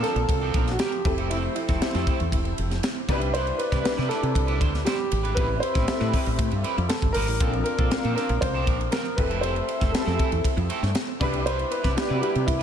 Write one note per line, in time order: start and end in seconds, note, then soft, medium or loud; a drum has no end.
0.00 0.20 F3 medium
0.00 0.77 A#3 medium
0.00 1.04 C4 medium
0.00 0.16 C4 medium
0.00 0.77 D4 medium
0.00 1.07 D4 medium
0.00 0.77 F4 medium
0.00 1.07 F4 medium
0.00 0.68 A4 loud
0.00 0.77 A#4 medium
0.00 1.07 A5 medium
0.00 snare soft
0.00 ride medium
0.05 0.16 D4 medium
0.05 0.15 A4 medium
0.15 0.26 A#1 medium
0.15 muted clean electric guitar stroke medium
0.15 ride soft
0.29 0.50 C2 loud
0.29 muted clean electric guitar stroke medium
0.29 kick loud
0.29 ride medium
0.41 0.53 F3 medium
0.41 0.54 C4 medium
0.41 0.54 D4 medium
0.41 0.56 A4 medium
0.54 0.75 A#1 medium
0.54 0.71 F3 medium
0.54 0.67 C4 medium
0.54 0.66 D4 medium
0.54 0.67 A#4 medium
0.54 kick medium
0.54 ride medium
0.67 muted clean electric guitar stroke medium
0.67 snare soft
0.67 ride soft
0.71 0.79 F#4 medium
0.79 1.00 F3 medium
0.79 0.92 C4 medium
0.79 0.92 D4 loud
0.79 1.27 G4 loud
0.79 0.92 A#4 loud
0.79 snare loud
0.79 ride medium
0.92 muted clean electric guitar stroke medium
0.92 ride soft
1.04 1.47 F1 loud
1.04 2.80 F3 medium
1.04 1.66 C4 medium
1.04 2.79 C4 loud
1.04 1.66 E4 medium
1.04 1.66 G4 medium
1.04 2.80 A4 medium
1.04 1.66 A4 medium
1.04 2.79 C5 loud
1.04 muted clean electric guitar stroke soft
1.04 kick loud
1.04 crash medium
1.18 1.29 A3 medium
1.18 1.30 C4 medium
1.18 1.31 E4 medium
1.18 1.31 A4 medium
1.18 ride soft
1.30 1.51 A3 medium
1.30 1.43 C4 medium
1.30 1.36 E4 medium
1.30 1.43 E4 medium
1.30 1.42 A4 medium
1.30 ride medium
1.44 muted clean electric guitar stroke soft
1.55 3.04 E4 medium
1.55 muted clean electric guitar stroke soft
1.55 ride medium
1.68 1.79 F1 medium
1.68 1.81 A3 medium
1.68 1.81 C4 medium
1.68 1.82 E4 medium
1.68 1.82 A4 medium
1.68 kick medium
1.68 snare soft
1.68 ride soft
1.81 2.62 C4 medium
1.81 2.62 E4 medium
1.81 2.63 G4 medium
1.81 2.63 C5 medium
1.81 muted fretless electric bass stroke medium
1.81 muted clean electric guitar stroke soft
1.81 snare loud
1.81 ride medium
1.94 2.05 F2 loud
1.94 2.05 A3 medium
1.94 2.06 C4 medium
1.94 2.07 E4 medium
1.94 2.07 A4 medium
1.94 snare soft
1.94 ride soft
2.07 2.24 A3 medium
2.07 2.19 C4 medium
2.07 2.19 E4 medium
2.07 2.18 A4 medium
2.07 kick loud
2.07 ride medium
2.19 2.30 E2 medium
2.19 muted clean electric guitar stroke soft
2.19 ride soft
2.32 2.53 E1 medium
2.32 muted clean electric guitar stroke soft
2.32 kick medium
2.32 ride medium
2.45 muted clean electric guitar stroke soft
2.45 ride soft
2.58 2.79 F1 medium
2.58 ride medium
2.71 muted clean electric guitar stroke soft
2.71 snare soft
2.71 ride soft
2.83 muted clean electric guitar stroke soft
2.83 snare loud
2.83 ride medium
2.96 muted clean electric guitar stroke medium
3.08 3.50 C2 loud
3.08 3.29 G3 medium
3.08 3.69 D4 medium
3.08 5.08 D4 medium
3.08 3.21 D4 loud
3.08 3.15 D#4 medium
3.08 3.21 E4 loud
3.08 3.70 G4 medium
3.08 5.08 G4 medium
3.08 5.08 B4 loud
3.08 3.70 B4 loud
3.08 3.20 B4 loud
3.08 5.08 D5 loud
3.08 kick loud
3.08 crash medium
3.15 3.73 E4 medium
3.21 muted clean electric guitar stroke soft
3.21 ride soft
3.34 3.54 G3 medium
3.34 3.47 D4 medium
3.34 3.46 E4 medium
3.34 3.45 B4 loud
3.34 3.60 C5 loud
3.34 ride medium
3.47 muted clean electric guitar stroke medium
3.47 ride soft
3.58 3.83 B4 loud
3.58 muted clean electric guitar stroke soft
3.58 ride medium
3.72 3.83 C2 medium
3.72 3.83 G3 medium
3.72 3.84 D4 medium
3.72 3.84 E4 medium
3.72 3.85 B4 medium
3.72 kick medium
3.72 snare soft
3.72 ride soft
3.84 4.66 D4 medium
3.84 4.66 E4 medium
3.84 4.66 G4 medium
3.84 3.90 B4 loud
3.84 4.66 B4 medium
3.84 muted clean electric guitar stroke soft
3.84 muted fretless electric bass stroke medium
3.84 snare loud
3.84 ride medium
3.97 4.08 C3 loud
3.97 4.08 G3 medium
3.97 4.09 D4 medium
3.97 4.10 E4 medium
3.97 4.10 B4 medium
3.97 snare soft
4.09 4.27 G3 medium
4.09 4.22 D4 medium
4.09 4.22 E4 medium
4.09 4.88 A4 loud
4.09 4.21 B4 medium
4.09 snare soft
4.09 ride medium
4.22 4.33 C3 loud
4.22 muted clean electric guitar stroke soft
4.22 ride soft
4.35 4.61 C2 medium
4.35 muted clean electric guitar stroke soft
4.35 kick medium
4.35 ride medium
4.47 4.59 G3 medium
4.47 4.59 D4 medium
4.47 4.60 E4 loud
4.47 4.61 B4 medium
4.47 ride soft
4.60 4.82 D2 medium
4.60 4.77 G3 medium
4.60 4.73 D4 medium
4.60 4.72 E4 medium
4.60 4.73 C5 medium
4.60 kick loud
4.60 ride medium
4.73 muted clean electric guitar stroke medium
4.73 snare soft
4.73 ride soft
4.85 5.06 G3 medium
4.85 4.99 D4 medium
4.85 4.98 E4 loud
4.85 5.38 G4 medium
4.85 4.98 C5 loud
4.85 snare loud
4.85 ride medium
4.99 muted clean electric guitar stroke soft
5.11 5.33 G#1 medium
5.11 muted clean electric guitar stroke soft
5.11 ride medium
5.23 5.35 G3 soft
5.23 5.36 D4 medium
5.23 5.36 E4 medium
5.23 5.36 B4 medium
5.23 ride soft
5.35 5.58 A1 loud
5.35 5.57 G3 medium
5.35 5.49 C4 loud
5.35 5.78 C4 medium
5.35 5.48 E4 loud
5.35 5.78 E4 medium
5.35 7.12 E4 medium
5.35 5.78 G4 medium
5.35 5.60 B4 loud
5.35 5.48 B4 loud
5.35 5.78 B4 medium
5.35 7.12 C5 medium
5.35 7.12 E5 medium
5.35 kick loud
5.35 ride medium
5.49 muted clean electric guitar stroke medium
5.60 6.92 C5 loud
5.60 muted clean electric guitar stroke soft
5.60 ride medium
5.74 5.86 A1 loud
5.74 5.86 G3 medium
5.74 5.87 C4 medium
5.74 5.87 E4 medium
5.74 5.87 B4 medium
5.74 kick loud
5.74 snare soft
5.74 ride medium
5.87 6.69 C4 medium
5.87 6.69 E4 medium
5.87 6.69 G4 medium
5.87 6.70 A4 medium
5.87 muted clean electric guitar stroke soft
5.87 muted fretless electric bass stroke medium
5.87 snare loud
5.87 ride medium
6.00 6.11 A2 loud
6.00 6.12 G3 medium
6.00 6.12 C4 medium
6.00 6.13 E4 medium
6.00 6.13 B4 medium
6.00 snare soft
6.00 ride soft
6.13 6.30 G3 medium
6.13 6.25 C4 medium
6.13 6.25 E4 medium
6.13 6.24 B4 medium
6.13 kick medium
6.13 open hi-hat medium
6.13 ride medium
6.26 6.37 A1 medium
6.26 muted clean electric guitar stroke soft
6.26 ride soft
6.38 6.49 A2 loud
6.38 muted clean electric guitar stroke soft
6.38 kick loud
6.38 hi-hat pedal medium
6.38 ride medium
6.51 6.62 G2 loud
6.51 muted clean electric guitar stroke medium
6.51 ride soft
6.63 6.84 G3 medium
6.63 6.77 C4 medium
6.63 6.76 E4 medium
6.63 6.76 B4 loud
6.63 ride medium
6.77 6.88 F2 loud
6.77 muted clean electric guitar stroke medium
6.77 ride soft
6.89 7.13 A4 medium
6.89 muted clean electric guitar stroke soft
6.89 snare loud
6.89 ride medium
7.02 7.13 G1 loud
7.02 muted clean electric guitar stroke medium
7.02 kick loud
7.02 ride soft
7.13 7.28 G#1 medium
7.13 7.35 G3 medium
7.13 7.28 C4 loud
7.13 7.27 E4 loud
7.13 7.61 A#4 loud
7.13 open hi-hat loud
7.13 ride medium
7.17 7.27 B4 loud
7.28 7.38 A1 medium
7.28 muted clean electric guitar stroke medium
7.28 ride soft
7.40 7.61 A#1 loud
7.40 7.61 F3 medium
7.40 7.81 C4 medium
7.40 7.53 C4 medium
7.40 7.47 C#4 medium
7.40 7.53 D4 medium
7.40 8.90 F4 medium
7.40 7.81 F4 medium
7.40 7.81 A4 medium
7.40 7.52 A4 loud
7.40 8.90 C5 medium
7.40 8.90 D5 medium
7.40 8.90 F5 medium
7.40 kick loud
7.40 hi-hat pedal medium
7.40 ride medium
7.47 7.84 D4 medium
7.53 muted clean electric guitar stroke soft
7.53 ride soft
7.64 8.12 A#4 loud
7.64 muted clean electric guitar stroke soft
7.64 ride medium
7.78 7.89 A#1 loud
7.78 7.90 F3 medium
7.78 7.91 C4 medium
7.78 7.91 D4 medium
7.78 7.91 A4 medium
7.78 kick loud
7.78 ride soft
7.91 8.72 C4 medium
7.91 8.72 D4 medium
7.91 8.73 F4 medium
7.91 8.73 A#4 medium
7.91 muted clean electric guitar stroke soft
7.91 muted fretless electric bass stroke medium
7.91 snare loud
7.91 ride medium
8.04 8.14 A#2 medium
8.04 8.15 F3 medium
8.04 8.16 C4 medium
8.04 8.16 D4 medium
8.04 8.17 A4 medium
8.04 ride soft
8.16 8.33 F3 medium
8.16 8.29 C4 medium
8.16 8.29 D4 medium
8.16 8.28 A4 medium
8.16 8.42 A#4 medium
8.16 snare soft
8.16 ride medium
8.29 8.40 A#1 loud
8.29 muted clean electric guitar stroke soft
8.29 ride soft
8.41 8.67 C2 loud
8.41 8.94 C5 medium
8.41 muted clean electric guitar stroke soft
8.41 kick loud
8.41 ride medium
8.54 8.65 F3 medium
8.54 8.66 C4 medium
8.54 8.67 D4 loud
8.54 8.68 A4 medium
8.66 8.88 A#1 loud
8.66 8.84 F3 medium
8.66 8.80 C4 medium
8.66 8.79 D4 medium
8.66 8.79 A#4 medium
8.66 kick medium
8.66 ride medium
8.80 muted clean electric guitar stroke medium
8.80 ride soft
8.91 9.13 F3 medium
8.91 9.05 C4 medium
8.91 9.05 D4 medium
8.91 9.18 A#4 medium
8.91 9.05 A#4 medium
8.91 snare loud
8.91 ride medium
9.05 muted clean electric guitar stroke medium
9.05 ride soft
9.16 9.60 F1 loud
9.16 9.79 C4 medium
9.16 9.79 E4 medium
9.16 10.92 E4 loud
9.16 9.79 G4 medium
9.16 9.79 A4 medium
9.16 10.93 A4 loud
9.16 9.41 B4 medium
9.16 10.93 C5 medium
9.16 10.92 E5 loud
9.16 muted clean electric guitar stroke soft
9.16 kick loud
9.16 crash medium
9.30 9.41 A3 medium
9.30 9.42 C4 medium
9.30 9.43 E4 medium
9.30 9.43 A4 medium
9.30 ride soft
9.41 9.63 A3 medium
9.41 9.55 C4 medium
9.41 9.55 E4 medium
9.41 9.54 A4 medium
9.41 9.95 C5 loud
9.41 ride medium
9.55 muted clean electric guitar stroke soft
9.55 ride soft
9.68 muted clean electric guitar stroke soft
9.68 ride medium
9.80 9.92 F1 loud
9.80 9.92 A3 medium
9.80 9.92 C4 medium
9.80 9.92 E4 medium
9.80 9.93 A4 medium
9.80 kick medium
9.80 snare soft
9.80 ride soft
9.92 10.75 C4 medium
9.92 10.75 E4 medium
9.92 10.75 G4 medium
9.92 10.01 G#4 medium
9.92 10.65 A4 medium
9.92 muted clean electric guitar stroke soft
9.92 muted fretless electric bass stroke medium
9.92 snare loud
9.92 ride medium
10.01 10.79 A4 medium
10.06 10.17 F2 loud
10.06 10.17 A3 medium
10.06 10.18 C4 medium
10.06 10.18 E4 medium
10.06 10.19 A4 medium
10.06 snare soft
10.18 10.36 A3 medium
10.18 10.31 C4 medium
10.18 10.31 E4 medium
10.18 10.30 A4 medium
10.18 kick loud
10.18 ride medium
10.31 10.43 E2 medium
10.31 muted clean electric guitar stroke medium
10.31 ride soft
10.44 muted clean electric guitar stroke soft
10.44 kick medium
10.44 ride medium
10.57 10.68 F2 loud
10.57 muted clean electric guitar stroke soft
10.57 ride soft
10.69 10.90 A3 loud
10.69 10.82 C4 loud
10.69 10.81 E4 medium
10.69 10.81 A4 loud
10.69 ride medium
10.82 10.93 G2 loud
10.82 muted clean electric guitar stroke medium
10.82 snare soft
10.82 ride soft
10.95 muted clean electric guitar stroke soft
10.95 snare loud
10.95 ride medium
11.08 muted clean electric guitar stroke soft
11.20 11.63 C2 loud
11.20 11.41 G3 loud
11.20 12.63 B3 loud
11.20 11.82 D4 loud
11.20 11.33 D4 loud
11.20 11.82 E4 medium
11.20 12.63 E4 loud
11.20 11.33 E4 loud
11.20 12.63 G4 loud
11.20 11.82 G4 medium
11.20 12.63 B4 loud
11.20 11.82 B4 loud
11.20 11.32 B4 loud
11.20 kick loud
11.20 crash medium
11.33 muted clean electric guitar stroke soft
11.33 ride soft
11.45 11.66 G3 medium
11.45 11.59 D4 medium
11.45 11.58 E4 medium
11.45 11.57 B4 medium
11.45 11.70 C5 loud
11.45 ride medium
11.58 muted clean electric guitar stroke soft
11.58 ride soft
11.71 11.95 B4 loud
11.71 muted clean electric guitar stroke soft
11.71 ride medium
11.83 11.95 C2 loud
11.83 11.95 G3 medium
11.83 11.96 D4 medium
11.83 11.96 E4 medium
11.83 11.97 B4 medium
11.83 kick medium
11.83 snare soft
11.83 ride soft
11.96 12.63 D4 medium
11.96 12.63 E4 medium
11.96 12.17 G4 medium
11.96 12.63 G4 medium
11.96 12.63 D5 medium
11.96 muted clean electric guitar stroke soft
11.96 muted fretless electric bass stroke medium
11.96 snare loud
11.96 ride medium
12.09 12.20 C3 loud
12.09 12.20 G3 medium
12.09 12.21 D4 medium
12.09 12.21 E4 medium
12.09 12.22 B4 medium
12.14 12.22 F#4 medium
12.21 12.39 G3 medium
12.21 12.34 D4 medium
12.21 12.34 E4 medium
12.21 12.46 G4 loud
12.21 12.33 B4 medium
12.21 ride medium
12.34 12.46 C3 medium
12.34 muted clean electric guitar stroke soft
12.34 ride soft
12.46 12.63 C2 loud
12.46 12.63 E4 medium
12.46 muted clean electric guitar stroke soft
12.46 kick loud
12.46 ride medium
12.59 12.63 B4 medium